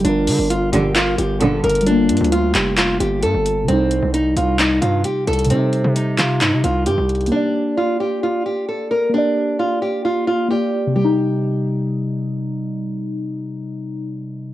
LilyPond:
<<
  \new Staff \with { instrumentName = "Nylon-string guitar" } { \time 4/4 \key c \dorian \tempo 4 = 132 d'4 f'8 g'8 f'8 g'8 a'8 bes'8 | d'4 f'8 g'8 f'8 g'8 a'4 | c'4 ees'8 f'8 ees'8 f'8 g'8 a'8 | c'4 ees'8 f'8 ees'8 f'8 g'4 |
d'4 f'8 g'8 f'8 g'8 a'8 bes'8 | d'4 f'8 g'8 f'8 f'8 g'4 | g'2. r4 | r1 | }
  \new Staff \with { instrumentName = "Synth keys" } { \time 4/4 \key c \dorian <g f' bes'>1 | <g bes f'>1 | <c g ees'>1 | <c g ees'>1 |
<bes g' d''>1 | <bes g' d''>2. <bes g' d''>4 | <c g ees'>1~ | <c g ees'>1 | }
  \new Staff \with { instrumentName = "String section" } { \clef bass \time 4/4 \key c \dorian r4. <bes,, g, d>16 r4 r16 <bes,, g, d>8 r8 | r1 | r1 | r1 |
r1 | r1 | r1 | r1 | }
  \new Staff \with { instrumentName = "808-style bass" } { \clef bass \time 4/4 \key c \dorian g,,8 d16 g,,8. g,,4 g,,4 g,,8~ | g,,8 g,16 d,8. f,,4 g,,8 g,16 g,,8. | c,8. c,8. c,4 g,8 r8 c,8 | c8. c8. c8 g,16 c16 c,8 g,16 c,8. |
r1 | r1 | r1 | r1 | }
  \new DrumStaff \with { instrumentName = "Drums" } \drummode { \time 4/4 hh8 hho8 hh8 hh8 <hc hh>8 hh8 hh8 hh32 hh32 hh32 hh32 | \tuplet 3/2 { hh16 r16 r16 <hh hho>16 hh16 hh16 } hh8 <hc hh>8 <hc hh>8 hh8 hh8 hh8 | hh8 hh8 hh8 hh8 <hc hh>8 hh8 hh8 hh32 hh32 hh32 hh32 | hh8 hh8 hh8 <hc hh>8 <hc hh>8 hh8 hh8 hh32 hh32 hh32 hh32 |
r4 r4 r4 r4 | r4 r4 r4 r4 | r4 r4 r4 r4 | r4 r4 r4 r4 | }
>>